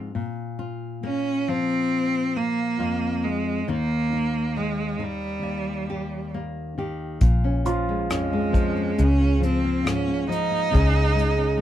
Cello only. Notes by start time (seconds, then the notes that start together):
1.05 C#4
1.48 C4
2.37 A#3
3.24 G#3
3.69 A#3
4.57 G#3
5.03 G3
8.16 G#3
9.02 C#4
9.46 C4
9.88 C#4
10.30 D#4